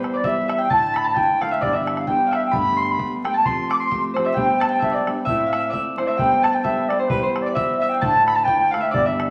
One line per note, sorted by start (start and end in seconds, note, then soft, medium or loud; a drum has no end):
0.00 0.24 E3 medium
0.00 0.24 G3 medium
0.00 0.24 B3 medium
0.00 0.25 G4 medium
0.00 1.81 B4 medium
0.00 0.18 C5 medium
0.00 0.13 D5 medium
0.00 0.23 E5 medium
0.00 0.58 G5 medium
0.00 0.56 A5 medium
0.04 bodhran medium
0.14 1.61 D5 medium
0.14 0.28 D5 medium
0.24 0.70 E3 medium
0.24 0.70 G3 medium
0.24 0.70 B3 medium
0.24 0.71 G4 medium
0.24 0.48 E5 medium
0.24 0.51 E5 loud
0.24 bodhran medium
0.48 1.47 E5 medium
0.48 0.60 E5 medium
0.48 bodhran medium
0.58 1.14 G5 medium
0.64 0.71 G5 medium
0.70 1.16 D2 medium
0.70 1.16 A2 medium
0.70 1.15 D3 medium
0.70 1.15 A3 medium
0.70 1.16 D4 medium
0.70 1.16 E4 medium
0.70 1.04 A5 medium
0.70 0.99 A5 loud
0.70 bodhran medium
0.94 2.29 B5 medium
0.94 1.08 B5 medium
0.94 bodhran medium
1.04 2.49 A5 medium
1.04 1.18 A5 medium
1.14 1.40 D3 medium
1.14 1.41 A3 medium
1.14 1.41 D4 medium
1.14 1.42 E4 medium
1.14 2.06 G5 medium
1.14 1.43 G5 loud
1.14 bodhran medium
1.41 1.61 D3 medium
1.41 1.62 A3 medium
1.41 1.62 D4 medium
1.41 1.62 E4 medium
1.41 1.57 F5 medium
1.41 1.53 F5 medium
1.41 bodhran medium
1.51 1.73 E5 medium
1.51 1.64 E5 medium
1.61 2.07 G2 medium
1.61 2.08 D3 medium
1.61 2.06 E3 medium
1.61 2.08 G3 medium
1.61 2.07 B3 medium
1.61 2.08 D4 medium
1.61 3.46 D5 medium
1.61 1.77 D5 medium
1.61 bodhran medium
1.73 2.31 E5 medium
1.73 2.00 E5 medium
1.87 bodhran medium
1.97 2.08 F5 medium
1.97 bodhran soft
2.07 2.53 E3 soft
2.07 2.53 G3 medium
2.07 2.52 B3 medium
2.07 2.52 D4 medium
2.07 3.24 G5 medium
2.07 2.37 G5 loud
2.07 bodhran medium
2.27 2.37 F5 medium
2.31 4.03 E5 medium
2.31 2.44 E5 loud
2.31 bodhran medium
2.45 2.54 G5 medium
2.51 2.99 G2 medium
2.51 2.99 D3 medium
2.51 2.98 G3 medium
2.51 2.99 A3 medium
2.51 2.98 B3 medium
2.51 2.99 D4 medium
2.51 2.83 B5 medium
2.51 bodhran medium
2.57 2.83 B5 loud
2.77 3.45 C6 medium
2.82 2.93 C6 medium
2.91 3.13 B5 loud
2.99 3.23 G3 medium
2.99 3.24 A3 medium
2.99 3.24 B3 medium
2.99 3.25 D4 medium
2.99 bodhran medium
3.24 3.45 G3 medium
3.24 3.45 A3 medium
3.24 3.45 B3 medium
3.24 3.46 D4 medium
3.24 3.30 G5 medium
3.24 3.35 G5 loud
3.24 bodhran medium
3.34 4.60 A5 medium
3.34 3.48 A5 medium
3.45 3.89 F3 medium
3.45 3.91 A3 medium
3.45 3.91 C4 medium
3.45 3.91 G4 medium
3.45 3.79 C6 loud
3.45 3.70 C6 loud
3.45 bodhran medium
3.69 4.91 D6 medium
3.69 3.76 D6 medium
3.69 bodhran medium
3.80 5.10 C6 medium
3.80 4.02 C6 medium
3.90 4.15 F3 medium
3.90 4.16 A3 medium
3.90 4.16 C4 medium
3.90 4.17 G4 medium
3.90 bodhran medium
4.14 4.36 F3 medium
4.14 4.37 A3 medium
4.14 4.36 C4 medium
4.14 5.97 C5 medium
4.14 4.28 C5 medium
4.14 bodhran medium
4.18 4.36 G4 medium
4.24 4.79 E5 medium
4.24 4.38 E5 medium
4.34 4.80 G3 medium
4.34 4.81 B3 medium
4.34 4.82 D4 medium
4.34 4.82 G4 medium
4.34 4.69 G5 medium
4.34 4.61 G5 loud
4.34 bodhran medium
4.60 6.05 A5 medium
4.60 4.66 A5 medium
4.60 bodhran medium
4.69 6.17 G5 medium
4.69 4.81 G5 medium
4.79 5.05 G3 medium
4.79 5.06 B3 medium
4.79 5.25 E5 medium
4.79 4.96 E5 loud
4.79 bodhran medium
4.83 5.07 D4 medium
4.83 5.06 G4 medium
4.91 5.69 D5 medium
4.91 5.07 D5 medium
5.06 5.27 G3 medium
5.06 5.27 B3 soft
5.06 5.28 D4 medium
5.06 5.28 G4 medium
5.06 bodhran medium
5.25 5.73 A2 medium
5.25 5.71 A3 medium
5.25 5.72 C4 medium
5.25 5.72 E4 medium
5.25 5.73 A4 medium
5.25 5.52 E5 loud
5.25 5.71 E5 loud
5.25 bodhran medium
5.46 5.59 F5 medium
5.53 5.70 E5 medium
5.53 bodhran medium
5.69 5.96 A3 medium
5.69 5.97 C4 medium
5.69 7.46 D5 medium
5.69 6.07 E5 medium
5.73 5.98 E4 medium
5.73 5.98 A4 medium
5.73 bodhran medium
5.97 6.18 A3 medium
5.97 6.19 C4 medium
5.97 6.19 E4 medium
5.97 6.19 A4 medium
5.97 6.08 C5 medium
5.97 6.99 C5 medium
5.97 bodhran medium
6.07 6.18 E5 medium
6.07 6.63 E5 medium
6.17 6.64 G3 medium
6.17 6.64 B3 medium
6.17 6.65 D4 medium
6.17 6.65 A4 medium
6.17 6.45 G5 loud
6.17 6.52 G5 medium
6.17 bodhran medium
6.43 7.88 A5 medium
6.43 6.56 A5 medium
6.43 bodhran medium
6.52 7.90 G5 medium
6.52 6.63 G5 medium
6.64 6.89 G3 medium
6.64 6.89 B3 medium
6.64 6.89 D4 medium
6.64 6.90 A4 medium
6.64 6.90 E5 medium
6.64 7.55 E5 medium
6.64 bodhran medium
6.89 7.10 G3 medium
6.89 7.10 B3 medium
6.89 7.11 D4 medium
6.89 7.11 A4 medium
6.89 7.01 D5 medium
6.89 bodhran medium
6.99 7.16 C5 medium
6.99 7.09 C5 medium
7.08 7.56 E3 medium
7.08 7.56 G3 medium
7.08 7.57 B3 medium
7.08 7.57 G4 medium
7.08 7.21 B4 medium
7.08 7.29 B4 medium
7.08 bodhran medium
7.19 7.43 C5 medium
7.19 8.32 C5 medium
7.36 bodhran medium
7.42 7.52 D5 medium
7.46 8.91 D5 medium
7.52 7.77 E5 loud
7.52 7.81 E5 medium
7.56 8.01 E3 medium
7.56 8.01 G3 medium
7.56 8.02 B3 medium
7.56 8.02 G4 medium
7.56 bodhran medium
7.77 7.91 E5 medium
7.77 8.77 E5 medium
7.89 8.01 G5 medium
7.89 8.44 G5 medium
8.01 8.48 D2 medium
8.01 8.48 A2 medium
8.01 8.46 D3 medium
8.01 8.46 A3 medium
8.01 8.48 D4 medium
8.01 8.47 E4 medium
8.01 8.25 A5 loud
8.01 8.35 A5 medium
8.01 bodhran medium
8.26 8.37 B5 loud
8.26 8.34 B5 medium
8.26 bodhran medium
8.34 8.45 A5 medium
8.34 9.30 A5 medium
8.34 9.30 B5 medium
8.44 8.72 D3 medium
8.44 8.72 A3 medium
8.44 8.73 G5 loud
8.44 9.30 G5 medium
8.44 bodhran medium
8.48 8.73 D4 medium
8.48 8.74 E4 medium
8.71 8.93 D3 medium
8.71 8.93 A3 medium
8.71 8.93 D4 medium
8.71 8.94 E4 medium
8.71 8.86 F5 medium
8.71 8.83 F5 loud
8.71 bodhran medium
8.80 9.05 E5 medium
8.80 8.92 E5 medium
8.91 9.30 G2 medium
8.91 9.30 D3 medium
8.91 9.30 E3 medium
8.91 9.30 G3 medium
8.91 9.30 B3 medium
8.91 9.30 D4 medium
8.91 9.30 D5 medium
8.91 9.07 D5 loud
8.91 bodhran medium
9.06 9.30 E5 medium
9.20 bodhran medium